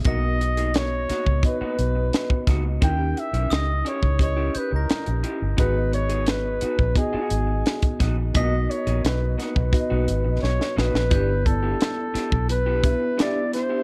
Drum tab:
HH |x-xxx-x-x-x-x-x-|x-xxx-x-x-x-xxx-|x-xxx-x-x-x-xxx-|x-xxx-x-x-x-----|
SD |----o-o-----o-o-|----o-------o---|----o-------o-o-|----o-o-----oooo|
BD |o------oo----oo-|o------oo-------|o------oo----oo-|o------oo-------|

HH |x-x-x-x-x-x-x-x-|
SD |----o-o-----o-o-|
BD |o-o----o--o-----|